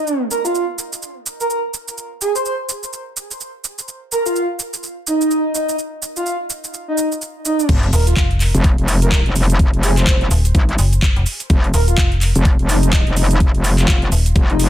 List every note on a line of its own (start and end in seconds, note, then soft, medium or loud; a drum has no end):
0.00 0.21 D#4 medium
0.07 cabasa soft
0.31 0.42 A#4 medium
0.31 cabasa medium
0.45 0.65 F4 medium
0.45 cabasa soft
0.55 cabasa soft
0.79 cabasa medium
0.93 cabasa soft
1.02 cabasa soft
1.26 cabasa medium
1.40 1.46 A#4 medium
1.40 cabasa soft
1.50 1.59 A#4 medium
1.50 cabasa soft
1.74 cabasa medium
1.88 cabasa soft
1.98 cabasa soft
2.21 2.33 G#4 medium
2.21 cabasa medium
2.36 2.42 C5 medium
2.36 cabasa soft
2.45 2.54 C5 medium
2.45 cabasa soft
2.69 cabasa medium
2.83 cabasa soft
2.93 cabasa soft
3.17 cabasa medium
3.31 cabasa soft
3.40 cabasa soft
3.64 cabasa medium
3.78 cabasa soft
3.88 cabasa soft
4.12 4.23 A#4 medium
4.12 cabasa medium
4.26 4.46 F4 medium
4.26 cabasa soft
4.36 cabasa soft
4.59 cabasa medium
4.74 cabasa soft
4.83 cabasa soft
5.07 5.53 D#4 medium
5.07 cabasa medium
5.21 cabasa soft
5.31 cabasa soft
5.55 5.76 D#4 medium
5.55 cabasa medium
5.69 cabasa soft
5.79 cabasa soft
6.02 cabasa medium
6.16 6.37 F4 medium
6.16 cabasa soft
6.26 cabasa soft
6.50 cabasa medium
6.64 cabasa soft
6.74 cabasa soft
6.88 7.08 D#4 medium
6.98 cabasa medium
7.12 cabasa soft
7.21 cabasa soft
7.45 7.69 D#4 medium
7.45 cabasa medium
7.59 cabasa soft
7.69 7.91 F1 loud
7.69 kick loud
7.69 closed hi-hat medium
7.69 crash loud
7.69 sub drop medium
7.69 cabasa soft
7.83 closed hi-hat soft
7.93 8.15 D#1 loud
7.93 8.04 A#4 loud
7.93 open hi-hat loud
7.93 cabasa medium
8.07 8.27 F4 medium
8.07 closed hi-hat medium
8.07 cabasa soft
8.17 kick loud
8.17 clap loud
8.17 closed hi-hat medium
8.17 cabasa soft
8.31 closed hi-hat soft
8.40 clap soft
8.40 open hi-hat medium
8.40 cabasa medium
8.55 8.76 F1 loud
8.55 closed hi-hat medium
8.55 cabasa soft
8.64 kick loud
8.64 closed hi-hat medium
8.64 cabasa soft
8.78 9.24 F1 medium
8.78 closed hi-hat soft
8.88 open hi-hat loud
8.88 cabasa medium
9.02 9.08 A#4 medium
9.02 closed hi-hat medium
9.02 cabasa soft
9.12 9.21 A#4 medium
9.12 kick loud
9.12 clap loud
9.12 closed hi-hat medium
9.12 cabasa soft
9.26 9.71 F1 loud
9.26 closed hi-hat soft
9.36 open hi-hat medium
9.36 cabasa medium
9.50 closed hi-hat medium
9.50 cabasa soft
9.59 kick loud
9.59 closed hi-hat medium
9.59 cabasa soft
9.74 10.06 F1 loud
9.74 closed hi-hat soft
9.83 9.95 G#4 loud
9.83 open hi-hat loud
9.83 cabasa medium
9.97 10.04 C5 medium
9.97 clap soft
9.97 closed hi-hat medium
9.97 cabasa soft
10.07 10.29 F1 loud
10.07 10.16 C5 medium
10.07 kick loud
10.07 clap loud
10.07 closed hi-hat medium
10.07 cabasa soft
10.21 closed hi-hat soft
10.31 10.53 D#1 loud
10.31 open hi-hat loud
10.31 cabasa medium
10.45 closed hi-hat medium
10.45 cabasa soft
10.55 10.77 G#1 loud
10.55 kick loud
10.55 closed hi-hat medium
10.55 cabasa soft
10.69 closed hi-hat soft
10.78 11.14 F#1 loud
10.78 open hi-hat loud
10.78 cabasa medium
10.93 closed hi-hat medium
10.93 cabasa soft
11.02 kick loud
11.02 clap loud
11.02 closed hi-hat medium
11.02 cabasa soft
11.16 11.25 F1 loud
11.16 closed hi-hat soft
11.26 open hi-hat medium
11.26 cabasa medium
11.40 closed hi-hat medium
11.40 cabasa soft
11.50 11.72 F1 loud
11.50 kick loud
11.50 closed hi-hat medium
11.50 cabasa soft
11.64 closed hi-hat soft
11.74 11.96 D#1 loud
11.74 11.85 A#4 medium
11.74 open hi-hat loud
11.74 cabasa medium
11.88 12.08 F4 loud
11.88 closed hi-hat medium
11.88 cabasa soft
11.98 kick loud
11.98 clap loud
11.98 closed hi-hat medium
11.98 cabasa soft
12.12 closed hi-hat soft
12.21 clap soft
12.21 open hi-hat loud
12.21 cabasa medium
12.35 12.57 F1 loud
12.35 closed hi-hat medium
12.35 cabasa soft
12.45 kick loud
12.45 closed hi-hat medium
12.45 cabasa soft
12.59 13.05 F1 loud
12.59 closed hi-hat soft
12.69 13.15 D#4 medium
12.69 open hi-hat loud
12.69 cabasa medium
12.83 closed hi-hat medium
12.83 cabasa soft
12.93 kick loud
12.93 clap loud
12.93 closed hi-hat medium
12.93 cabasa soft
13.07 13.52 F1 loud
13.07 closed hi-hat soft
13.17 13.38 D#4 medium
13.17 open hi-hat loud
13.17 cabasa medium
13.31 closed hi-hat medium
13.31 cabasa soft
13.40 kick loud
13.40 closed hi-hat medium
13.40 cabasa soft
13.55 13.87 F1 medium
13.55 closed hi-hat soft
13.64 open hi-hat loud
13.64 cabasa medium
13.78 13.99 F4 medium
13.78 clap soft
13.78 closed hi-hat medium
13.78 cabasa soft
13.88 14.10 F1 loud
13.88 kick loud
13.88 clap loud
13.88 closed hi-hat medium
13.88 cabasa soft
14.02 closed hi-hat soft
14.12 14.34 D#1 medium
14.12 open hi-hat medium
14.12 cabasa medium
14.26 closed hi-hat medium
14.26 cabasa soft
14.36 14.69 F1 loud
14.36 kick loud
14.36 closed hi-hat medium
14.36 cabasa soft
14.50 14.69 D#4 medium
14.50 closed hi-hat soft
14.59 open hi-hat loud
14.59 cabasa medium